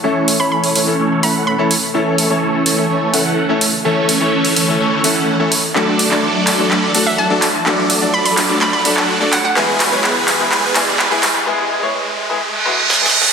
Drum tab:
HH |------o--------o--o-----------o-----------o-----|------o-----------o-----------o-----------o-----|------o--------o--o-----------o-----------o-----|------o-----------o-----------o-----------o-----|
CP |------------------------------------------------|------------------------------------------------|------------------------------------------------|x--------x--------x-----x-----------------x-----|
SD |------------------------------------------------|------------------------------------------------|------------------------------------------------|------------------------------------------------|

HH |------o--------o--o-----------o-----------o-----|------o-----------o-----------o-----------o-----|------------------------------------------------|
CP |x-----------------x-----x--------x--------x-----|x-----x-----x-----x-----x-----x-----x-----x-----|------------------------------------------------|
SD |------------------------------------------------|------------------------------------------------|------------------------------------o---o---o---|